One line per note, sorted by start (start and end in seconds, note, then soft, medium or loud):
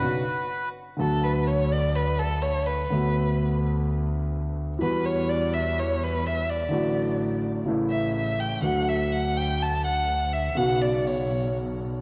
0.00 0.22 B1 soft
0.00 0.22 B2 soft
0.00 0.22 C#3 soft
0.00 0.22 F#3 soft
0.00 0.22 B3 soft
0.00 0.22 D4 soft
0.00 0.69 F#4 medium
0.00 0.69 B4 medium
0.97 2.81 D2 medium
0.97 0.98 D3 soft
0.97 2.81 D3 medium
0.97 2.81 F#3 soft
0.97 2.81 A3 soft
1.01 2.82 F#4 medium
1.01 1.25 A4 medium
1.24 1.48 B4 medium
1.47 1.74 C#5 medium
1.72 1.97 D5 medium
1.96 2.21 B4 medium
2.19 2.43 A4 medium
2.42 2.68 C#5 medium
2.66 3.62 B4 medium
2.90 4.72 D2 medium
2.90 4.73 D2 medium
2.90 4.72 D3 medium
2.90 4.72 A3 soft
2.90 4.73 B3 soft
2.90 4.73 F#4 medium
4.79 6.62 E2 medium
4.79 6.62 E3 medium
4.79 6.62 G3 medium
4.79 6.62 B3 soft
4.79 5.07 B4 medium
4.83 6.63 F#4 medium
5.05 5.31 C#5 medium
5.29 5.55 D5 medium
5.54 5.81 E5 medium
5.79 6.05 C#5 medium
6.03 6.28 B4 medium
6.27 6.51 E5 medium
6.50 7.44 D5 medium
6.69 7.62 A1 medium
6.69 7.62 A2 medium
6.69 7.61 D3 medium
6.69 7.62 F#3 soft
6.69 7.63 A3 soft
6.74 7.64 F#4 medium
7.66 8.58 A1 medium
7.66 8.59 A1 medium
7.66 8.59 A2 medium
7.66 8.58 C#3 medium
7.66 8.58 E3 soft
7.66 8.59 A3 soft
7.70 8.60 E4 medium
7.90 8.13 E5 medium
8.15 8.41 E5 medium
8.40 8.63 G5 medium
8.61 10.46 D2 medium
8.61 10.45 D3 medium
8.61 10.45 F#3 soft
8.61 10.46 A3 soft
8.61 10.46 F#4 medium
8.61 8.90 F#5 medium
8.89 9.14 E5 medium
9.12 9.38 F#5 medium
9.37 9.64 G5 medium
9.62 9.84 A5 medium
9.84 10.34 F#5 medium
10.33 10.58 E5 medium
10.55 12.01 B1 medium
10.55 12.01 B2 medium
10.55 12.01 C#3 medium
10.55 12.01 F#3 soft
10.55 12.01 B3 soft
10.55 12.01 F#4 medium
10.55 10.84 F#5 medium
10.82 11.08 D5 medium
11.07 11.52 C#5 medium